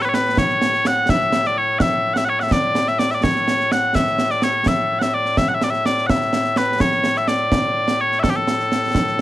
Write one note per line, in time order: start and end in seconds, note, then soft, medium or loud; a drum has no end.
0.00 9.21 A2 medium
0.00 0.09 B4 medium
0.00 snare soft
0.09 0.15 C#5 medium
0.14 0.39 B4 medium
0.14 snare medium
0.26 snare soft
0.37 0.87 C#5 medium
0.37 concert bass drum medium
0.37 snare medium
0.49 snare soft
0.62 snare medium
0.74 snare soft
0.85 1.10 F#5 loud
0.85 snare medium
1.09 1.47 E5 loud
1.09 concert bass drum medium
1.09 snare loud
1.21 snare soft
1.32 snare medium
1.44 1.58 D5 medium
1.44 snare soft
1.58 1.79 C#5 medium
1.79 2.14 E5 loud
1.79 1.82 F#5 loud
1.79 concert bass drum medium
1.79 snare loud
2.14 2.25 E5 medium
2.14 2.17 F#5 medium
2.14 snare medium
2.25 2.29 F#5 medium
2.29 2.40 C#5 medium
2.40 2.52 E5 medium
2.40 2.43 F#5 medium
2.40 snare soft
2.51 2.88 D5 loud
2.51 concert bass drum medium
2.51 snare loud
2.75 snare medium
2.88 2.99 E5 medium
2.88 snare soft
2.99 3.11 D5 medium
2.99 snare medium
3.11 3.23 D5 medium
3.11 3.14 E5 medium
3.11 snare soft
3.23 3.72 C#5 medium
3.23 concert bass drum medium
3.23 snare loud
3.36 snare soft
3.48 snare medium
3.60 snare soft
3.72 3.95 F#5 loud
3.72 snare medium
3.95 4.31 E5 loud
3.95 concert bass drum medium
3.95 snare medium
4.07 snare soft
4.18 snare medium
4.30 4.43 D5 medium
4.30 snare soft
4.42 4.68 C#5 medium
4.42 snare medium
4.66 4.99 E5 medium
4.66 concert bass drum medium
4.66 snare loud
4.99 5.14 E5 medium
4.99 5.03 F#5 medium
4.99 snare medium
5.14 5.38 D5 medium
5.25 snare soft
5.37 5.48 E5 loud
5.37 concert bass drum medium
5.37 snare medium
5.49 5.54 F#5 medium
5.54 5.64 E5 loud
5.61 5.70 D5 medium
5.61 snare medium
5.70 5.86 E5 medium
5.70 snare soft
5.86 6.07 D5 medium
5.86 snare medium
5.98 snare soft
6.07 6.57 E5 medium
6.07 6.10 F#5 medium
6.07 concert bass drum medium
6.07 snare loud
6.21 snare soft
6.33 snare medium
6.44 snare soft
6.56 6.81 B4 medium
6.56 snare medium
6.80 7.17 C#5 medium
6.80 concert bass drum medium
6.80 snare loud
6.92 snare soft
7.04 snare medium
7.16 7.28 E5 medium
7.16 snare soft
7.28 8.01 D5 medium
7.28 snare medium
7.52 concert bass drum medium
7.52 snare loud
7.88 snare medium
8.01 8.19 C#5 medium
8.12 snare soft
8.19 8.30 A4 medium
8.19 8.23 E5 medium
8.24 concert bass drum medium
8.24 snare loud
8.30 8.36 G4 medium
8.36 9.21 A4 medium
8.47 snare medium
8.60 snare soft
8.72 snare medium
8.83 snare soft
8.95 concert bass drum medium
8.95 snare loud
9.07 snare soft